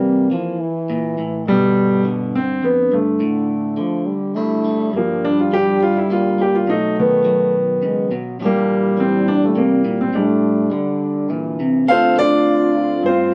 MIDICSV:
0, 0, Header, 1, 4, 480
1, 0, Start_track
1, 0, Key_signature, -1, "minor"
1, 0, Tempo, 578035
1, 1220, Time_signature, 3, 2, 24, 8
1, 11078, End_track
2, 0, Start_track
2, 0, Title_t, "Grand piano"
2, 0, Program_c, 0, 0
2, 0, Note_on_c, 0, 52, 48
2, 0, Note_on_c, 0, 58, 65
2, 473, Note_off_c, 0, 58, 0
2, 482, Note_off_c, 0, 52, 0
2, 1232, Note_on_c, 0, 55, 97
2, 1250, Note_on_c, 0, 47, 64
2, 1671, Note_off_c, 0, 55, 0
2, 1920, Note_off_c, 0, 47, 0
2, 1955, Note_on_c, 0, 60, 88
2, 2191, Note_on_c, 0, 59, 78
2, 2193, Note_off_c, 0, 60, 0
2, 2431, Note_off_c, 0, 59, 0
2, 2436, Note_on_c, 0, 57, 68
2, 2450, Note_on_c, 0, 50, 54
2, 3354, Note_off_c, 0, 57, 0
2, 3361, Note_off_c, 0, 50, 0
2, 4121, Note_on_c, 0, 58, 78
2, 4131, Note_on_c, 0, 53, 55
2, 4357, Note_off_c, 0, 58, 0
2, 4357, Note_on_c, 0, 62, 91
2, 4471, Note_off_c, 0, 62, 0
2, 4482, Note_on_c, 0, 65, 70
2, 4594, Note_off_c, 0, 65, 0
2, 4596, Note_on_c, 0, 67, 94
2, 4802, Note_off_c, 0, 53, 0
2, 4811, Note_off_c, 0, 67, 0
2, 4837, Note_on_c, 0, 65, 86
2, 4951, Note_off_c, 0, 65, 0
2, 4958, Note_on_c, 0, 64, 79
2, 5061, Note_off_c, 0, 64, 0
2, 5081, Note_on_c, 0, 65, 78
2, 5317, Note_off_c, 0, 65, 0
2, 5326, Note_on_c, 0, 67, 81
2, 5436, Note_off_c, 0, 67, 0
2, 5438, Note_on_c, 0, 65, 79
2, 5552, Note_off_c, 0, 65, 0
2, 5555, Note_on_c, 0, 57, 62
2, 5561, Note_on_c, 0, 63, 83
2, 5774, Note_off_c, 0, 63, 0
2, 5809, Note_on_c, 0, 59, 84
2, 5812, Note_on_c, 0, 51, 56
2, 6233, Note_off_c, 0, 57, 0
2, 6719, Note_off_c, 0, 59, 0
2, 6720, Note_off_c, 0, 51, 0
2, 7018, Note_on_c, 0, 58, 86
2, 7019, Note_on_c, 0, 55, 63
2, 7473, Note_on_c, 0, 60, 86
2, 7491, Note_off_c, 0, 58, 0
2, 7684, Note_off_c, 0, 55, 0
2, 7688, Note_off_c, 0, 60, 0
2, 7706, Note_on_c, 0, 62, 94
2, 7825, Note_off_c, 0, 62, 0
2, 7841, Note_on_c, 0, 57, 71
2, 7949, Note_on_c, 0, 58, 74
2, 7952, Note_off_c, 0, 57, 0
2, 8279, Note_off_c, 0, 58, 0
2, 8311, Note_on_c, 0, 60, 81
2, 8416, Note_off_c, 0, 60, 0
2, 8429, Note_on_c, 0, 62, 76
2, 8440, Note_on_c, 0, 55, 58
2, 9352, Note_off_c, 0, 62, 0
2, 9358, Note_off_c, 0, 55, 0
2, 9868, Note_on_c, 0, 77, 105
2, 9886, Note_on_c, 0, 72, 82
2, 9887, Note_on_c, 0, 69, 78
2, 9888, Note_on_c, 0, 65, 70
2, 10089, Note_off_c, 0, 77, 0
2, 10099, Note_off_c, 0, 69, 0
2, 10099, Note_off_c, 0, 72, 0
2, 10100, Note_off_c, 0, 65, 0
2, 10119, Note_on_c, 0, 74, 110
2, 10129, Note_on_c, 0, 65, 77
2, 10134, Note_on_c, 0, 62, 75
2, 10799, Note_off_c, 0, 74, 0
2, 10803, Note_off_c, 0, 65, 0
2, 10806, Note_off_c, 0, 62, 0
2, 10843, Note_on_c, 0, 72, 87
2, 10855, Note_on_c, 0, 65, 67
2, 10857, Note_on_c, 0, 60, 72
2, 11078, Note_off_c, 0, 60, 0
2, 11078, Note_off_c, 0, 65, 0
2, 11078, Note_off_c, 0, 72, 0
2, 11078, End_track
3, 0, Start_track
3, 0, Title_t, "French horn"
3, 0, Program_c, 1, 60
3, 0, Note_on_c, 1, 55, 91
3, 228, Note_off_c, 1, 55, 0
3, 255, Note_on_c, 1, 53, 81
3, 498, Note_on_c, 1, 52, 90
3, 511, Note_off_c, 1, 53, 0
3, 1226, Note_on_c, 1, 50, 69
3, 1238, Note_off_c, 1, 52, 0
3, 2435, Note_off_c, 1, 50, 0
3, 2654, Note_on_c, 1, 50, 77
3, 3146, Note_on_c, 1, 53, 80
3, 3159, Note_off_c, 1, 50, 0
3, 3374, Note_on_c, 1, 55, 78
3, 3386, Note_off_c, 1, 53, 0
3, 3614, Note_on_c, 1, 57, 90
3, 3627, Note_off_c, 1, 55, 0
3, 4097, Note_off_c, 1, 57, 0
3, 4101, Note_on_c, 1, 55, 96
3, 5549, Note_on_c, 1, 54, 74
3, 5561, Note_off_c, 1, 55, 0
3, 6278, Note_off_c, 1, 54, 0
3, 6498, Note_on_c, 1, 56, 73
3, 6737, Note_on_c, 1, 54, 69
3, 6750, Note_off_c, 1, 56, 0
3, 6977, Note_off_c, 1, 54, 0
3, 6982, Note_on_c, 1, 55, 86
3, 8386, Note_off_c, 1, 55, 0
3, 8415, Note_on_c, 1, 57, 85
3, 8899, Note_on_c, 1, 50, 82
3, 8912, Note_off_c, 1, 57, 0
3, 9378, Note_on_c, 1, 52, 72
3, 9390, Note_off_c, 1, 50, 0
3, 9861, Note_off_c, 1, 52, 0
3, 9871, Note_on_c, 1, 65, 92
3, 11078, Note_off_c, 1, 65, 0
3, 11078, End_track
4, 0, Start_track
4, 0, Title_t, "Clean electric guitar"
4, 0, Program_c, 2, 27
4, 0, Note_on_c, 2, 48, 68
4, 261, Note_off_c, 2, 48, 0
4, 261, Note_on_c, 2, 52, 58
4, 745, Note_on_c, 2, 46, 61
4, 977, Note_off_c, 2, 46, 0
4, 981, Note_on_c, 2, 45, 65
4, 1190, Note_off_c, 2, 52, 0
4, 1220, Note_off_c, 2, 45, 0
4, 1223, Note_on_c, 2, 43, 66
4, 1699, Note_on_c, 2, 50, 60
4, 2177, Note_off_c, 2, 43, 0
4, 2180, Note_on_c, 2, 41, 60
4, 2418, Note_off_c, 2, 41, 0
4, 2422, Note_on_c, 2, 43, 66
4, 2659, Note_on_c, 2, 45, 67
4, 2660, Note_off_c, 2, 43, 0
4, 3119, Note_off_c, 2, 50, 0
4, 3129, Note_on_c, 2, 50, 58
4, 3138, Note_off_c, 2, 45, 0
4, 3621, Note_on_c, 2, 55, 50
4, 3626, Note_on_c, 2, 62, 55
4, 3633, Note_on_c, 2, 64, 56
4, 3846, Note_off_c, 2, 55, 0
4, 3856, Note_on_c, 2, 55, 56
4, 4074, Note_off_c, 2, 62, 0
4, 4095, Note_on_c, 2, 43, 62
4, 4106, Note_off_c, 2, 64, 0
4, 4573, Note_off_c, 2, 50, 0
4, 4583, Note_on_c, 2, 50, 55
4, 5058, Note_off_c, 2, 55, 0
4, 5068, Note_on_c, 2, 58, 55
4, 5290, Note_off_c, 2, 58, 0
4, 5300, Note_on_c, 2, 58, 58
4, 5508, Note_off_c, 2, 43, 0
4, 5511, Note_off_c, 2, 58, 0
4, 5541, Note_off_c, 2, 50, 0
4, 5542, Note_on_c, 2, 47, 66
4, 6015, Note_on_c, 2, 54, 55
4, 6495, Note_off_c, 2, 47, 0
4, 6499, Note_on_c, 2, 49, 54
4, 6734, Note_off_c, 2, 49, 0
4, 6738, Note_on_c, 2, 47, 68
4, 6946, Note_off_c, 2, 54, 0
4, 6971, Note_off_c, 2, 47, 0
4, 6975, Note_on_c, 2, 46, 66
4, 6978, Note_on_c, 2, 52, 55
4, 6984, Note_on_c, 2, 55, 52
4, 6992, Note_on_c, 2, 62, 51
4, 6996, Note_on_c, 2, 67, 70
4, 7448, Note_off_c, 2, 52, 0
4, 7451, Note_on_c, 2, 52, 66
4, 7932, Note_off_c, 2, 46, 0
4, 7935, Note_on_c, 2, 48, 65
4, 8175, Note_off_c, 2, 48, 0
4, 8178, Note_on_c, 2, 46, 67
4, 8386, Note_off_c, 2, 52, 0
4, 8398, Note_off_c, 2, 67, 0
4, 8412, Note_off_c, 2, 46, 0
4, 8415, Note_on_c, 2, 45, 66
4, 8896, Note_off_c, 2, 45, 0
4, 8898, Note_on_c, 2, 50, 63
4, 9383, Note_on_c, 2, 46, 53
4, 9622, Note_off_c, 2, 46, 0
4, 9632, Note_on_c, 2, 48, 64
4, 9657, Note_off_c, 2, 62, 0
4, 9856, Note_off_c, 2, 50, 0
4, 9861, Note_on_c, 2, 38, 66
4, 9866, Note_off_c, 2, 55, 0
4, 9866, Note_on_c, 2, 50, 62
4, 9867, Note_off_c, 2, 48, 0
4, 9875, Note_on_c, 2, 57, 64
4, 9878, Note_on_c, 2, 60, 58
4, 9884, Note_on_c, 2, 65, 65
4, 10093, Note_off_c, 2, 57, 0
4, 10096, Note_on_c, 2, 57, 59
4, 10819, Note_off_c, 2, 38, 0
4, 10822, Note_on_c, 2, 43, 67
4, 11063, Note_off_c, 2, 43, 0
4, 11078, Note_off_c, 2, 50, 0
4, 11078, Note_off_c, 2, 57, 0
4, 11078, Note_off_c, 2, 60, 0
4, 11078, Note_off_c, 2, 65, 0
4, 11078, End_track
0, 0, End_of_file